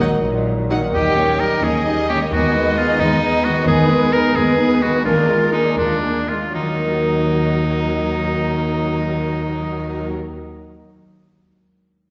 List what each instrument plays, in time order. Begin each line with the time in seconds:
Already playing: double bass section D#2, cello section D#3, timpani D#3, harp D#3 F#3 A#3 D#4 A#4, french horn section F#3 D#4, clarinet D#4, violin section D#5
0.00 viola section F#3 D#4, harp F#4, violin section F#5
0.12 harp D#5
0.23 double bass section A#1, cello section A#2, harp A#5
0.35 harp F#5
0.47 harp A#5
0.59 harp F#4
0.70 viola section F#3 D#4, harp A#4, violin section F#5
0.76 harp D#3
0.80 harp F#3 A#3
0.84 harp D#4
0.89 harp C#5
0.93 double bass section D#2, cello section D#3, viola section G3 D#4, oboe G4, violin section D#5 G5
1.17 viola section A#3 C#4, violin section C#5
1.40 viola section G3 D#4, oboe A#4, violin section D#5
1.63 double bass section D#2, cello section D#3, viola section A#3 C#4, oboe G#4, violin section C#5 D#5
1.86 viola section G3 D#4, violin section D#5
2.09 viola section A#3 C#4, oboe G4, violin section C#5
2.14 harp D#3
2.18 harp G#3
2.23 harp D#4
2.27 harp B4
2.32 double bass section D#2, cello section D#3, viola section B3 D#4, oboe F#4, violin section G#4 D#5
2.55 viola section G#3 B3, violin section B4
2.77 viola section B3 D#4, oboe F4, violin section G#4
2.99 double bass section D#2, cello section D#3, viola section G#3 B3, oboe D#4, violin section B4
3.23 viola section B3 D#4, violin section G#4
3.44 viola section G#3 B3, oboe F#4, violin section B4
3.49 harp D#3
3.53 harp G#3
3.58 harp D#4
3.62 harp B4
3.66 double bass section D#2, cello section D#3, viola section B3 D#4, violin section G#4 B4, oboe G#4
3.89 viola section G#3 B3, violin section B4
4.12 viola section B3 D#4, violin section G#4, oboe A#4
4.35 double bass section D#2, cello section D#3, viola section G#3 B3, oboe G#4, violin section B4
4.58 viola section B3 D#4, violin section G#4
4.81 viola section G#3 B3, oboe F#4, violin section B4
4.87 harp D#3
4.92 harp G#3
4.96 harp D4
5.00 harp A#4
5.05 double bass section D#2, cello section D#3, viola section A#3 D4, oboe F4, violin section G#4 A#4
5.28 viola section G#3 F4, violin section A#4
5.52 viola section A#3 D4, oboe D#4, violin section G#4
5.78 double bass section D#2, cello section D#3, viola section G#3 F4, oboe D4, violin section A#4
6.04 viola section A#3 D4, violin section G#4
6.29 viola section G#3 F4, oboe F4, violin section A#4
6.54 double bass section D#2, harp D#3, cello section D#3, viola section F#3, violin section D#4 A#4, oboe D#4
6.61 harp F#3
6.68 harp D#4
6.75 harp A#4
6.82 harp D#5